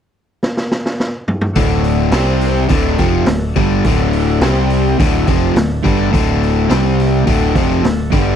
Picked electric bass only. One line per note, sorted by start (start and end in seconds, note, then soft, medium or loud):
1.56 2.10 D1 medium
2.12 2.66 C2 medium
2.70 2.97 D1 medium
2.99 3.26 F1 loud
3.27 3.54 D1 medium
3.56 3.83 G1 medium
3.85 4.38 D1 loud
4.41 4.94 C2 medium
4.99 5.26 D1 medium
5.28 5.54 F1 medium
5.54 5.82 D1 medium
5.85 6.11 G1 medium
6.13 6.66 D1 loud
6.70 7.23 C2 medium
7.27 7.54 D1 medium
7.56 7.82 F1 medium
7.83 8.10 D1 medium
8.12 8.36 G1 medium